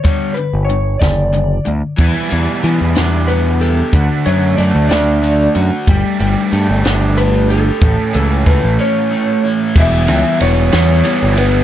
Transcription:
<<
  \new Staff \with { instrumentName = "Clean electric guitar" } { \time 6/8 \key e \dorian \tempo 4. = 62 cis''8 b'8 cis''8 d''4 r8 | r2 b'8 a'8~ | a'8 cis''8 d''8 d''4 r8 | r2 b'8 a'8~ |
a'8 a'8 b'8 cis''4 r8 | e''4 cis''4. b'8 | }
  \new Staff \with { instrumentName = "Overdriven electric guitar" } { \time 6/8 \key e \dorian r2. | <e, b, e g b e'>2. | <d a d' fis'>2. | <g a d' g'>2. |
<a, e a cis' a'>2. | e,8 e8 b8 e8 g8 b8 | }
  \new Staff \with { instrumentName = "Overdriven electric guitar" } { \clef bass \time 6/8 \key e \dorian <g, d g>8 <g, d>8 <g, d>8 <g, d>8 <g, d>8 <g, d>8 | e8 e8 b8 d'8 b8 g'8 | d8 fis8 a8 d'8 a8 fis'8 | g8 g8 a8 d'8 a8 g'8 |
a,8 e8 a8 cis'8 a8 e'8 | <e g b e'>4. <e g b e'>8 <e g b e'>8 <g b e'>8 | }
  \new Staff \with { instrumentName = "Picked electric bass" } { \clef bass \time 6/8 \key e \dorian r8. g,,8. fis,,4 d,16 r16 | e,16 r16 e,16 r16 e16 e,16 e,4. | d,16 r16 fis,8 fis,16 d,16 d,4 fis,16 r16 | g,,16 r16 g,,16 r16 g,16 g,,16 g,,4. |
a,,16 r16 cis,8 cis,16 a,,16 r4. | e,,8 cis,16 r16 e,,8 e,8 r16 g,,8. | }
  \new DrumStaff \with { instrumentName = "Drums" } \drummode { \time 6/8 <hh bd>8 hh8 hh8 <hh bd sn>8 hh8 hh8 | <cymc bd>8 hh8 hh8 <hh sn>8 hh8 hh8 | <hh bd>8 hh8 hh8 <hh sn>8 hh8 hh8 | <hh bd>8 hh8 hh8 <hh sn>8 hh8 hh8 |
<hh bd>8 hh8 <hh bd>8 r4. | <cymc bd>8 cymr8 cymr8 <cymr sn>8 cymr8 cymr8 | }
>>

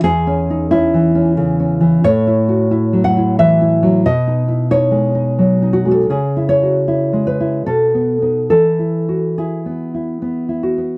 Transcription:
\new Staff \with { instrumentName = "Nylon-string guitar" } { \time 3/4 \key e \major \tempo 4 = 87 << { gis'4 e'4 r4 | cis''4. fis''8 e''4 | dis''4 cis''4. fis'16 a'16 | gis'8 cis''4 b'8 a'4 |
a'4 gis'4. fis'8 | } \\ { \tuplet 3/2 { e,8 cis'8 dis'8 cis'8 e8 cis'8 cis8 cis'8 e8 } | \tuplet 3/2 { a,8 e'8 fis'8 e'8 fis8 e'8 e8 e'8 fis8 } | \tuplet 3/2 { b,8 dis'8 e'8 dis'8 gis8 dis'8 fis8 dis'8 gis8 } | \tuplet 3/2 { cis8 e'8 fis'8 e'8 gis8 e'8 b,8 b8 <b dis'>8 } |
\tuplet 3/2 { e8 e'8 fis'8 e'8 b8 e'8 b8 e'8 b8 } | } >> }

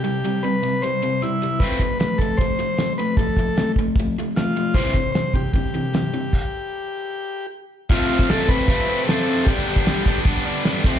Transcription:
<<
  \new Staff \with { instrumentName = "Transistor combo organ" } { \time 4/4 \key f \lydian \tempo 4 = 152 g'4 b'4 c''4 e'4 | b'4 b'8 a'8 c''4. b'8 | a'4. r4. f'4 | c''4 c''8 g'8 g'2~ |
g'2. r4 | f'4 a'8 b'4. a'4 | g'2 r2 | }
  \new Staff \with { instrumentName = "Overdriven electric guitar" } { \clef bass \time 4/4 \key f \lydian <c g>8 <c g>8 <c g>8 <c g>8 <c g>8 <c g>8 <c g>8 <c g>8 | <f a c'>8 <f a>8 <f a>8 <f a>8 <f a>8 <f a>8 <f a>8 <f a>8 | <f a>8 <f a>8 <f a>8 <f a>8 <f a>8 <f a>8 <f a>8 <f a>8 | <c e g>8 <c e>8 <c e>8 <c e>8 <c e>8 <c e>8 <c e>8 <c e>8 |
r1 | <f, c f a c'>8 <f a c'>8 <f, c f a c'>8 <f a c'>8 <c f a c'>8 <f a c'>8 <f, c f a c'>8 <f a c'>8 | <g, d g b d'>8 <g b d'>8 <g, d g b d'>8 <g b d'>8 <d g b d'>8 <g b d'>8 <g, d g b d'>8 <f, c f a c'>8 | }
  \new DrumStaff \with { instrumentName = "Drums" } \drummode { \time 4/4 r4 r4 r4 r4 | <hho bd>8 bd8 <hho sn>8 bd8 <hho bd>4 <hho sn>4 | <hho bd>8 bd8 <hho sn>8 bd8 <hho bd>4 <hho sn>4 | <hho bd>8 bd8 <hho sn>8 bd8 <hho bd>4 <hho sn>4 |
<cymc bd>4 r4 r4 r4 | <cymc bd>8. bd16 <hho sn>8 bd8 <hho bd>4 <hho sn>4 | <hho bd>8. bd16 <hho sn>8 bd8 <hho bd>4 <hho sn>8 <cymc bd>8 | }
>>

